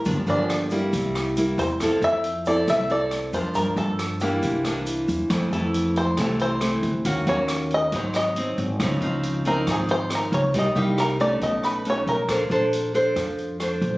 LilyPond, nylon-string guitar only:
\new Staff \with { instrumentName = "Nylon-string guitar" } { \time 4/4 \key f \major \tempo 4 = 137 << { <f bes d'>8 <f bes d'>4 <g bes e'>4. <g bes e'>8 r8 | <c' e' a'>4 r8 <c' e' a'>4 <c' e' a'>4 <f bes d'>8~ | <f bes d'>4. <e bes d'>4 <e bes d'>4. | <e a c'>8 <e a c'>4. <e a c'>4 <e a c'>8 r8 |
<bes des' ges'>8 <bes des' ges'>4. <ges c' ees'>4 <ges c' ees'>8 r8 | <f c' ees'>8 <f c' ees'>4 <f c' ees'>4. <f c' ees'>4 | <g bes ees'>8 <g bes ees'>4 <a des' ees'>4. <a cis' dis'>8 r8 | <d' a' c''>8 <d' a' c''>4 <d' a' c''>4. <d' a' c''>4 | } \\ { g,2 c2 | f2 c2 | g,2 c2 | f,2 c2 |
ees2 aes,2 | des2 aes,2 | c2 b,2 | bes2 f2 | } >> }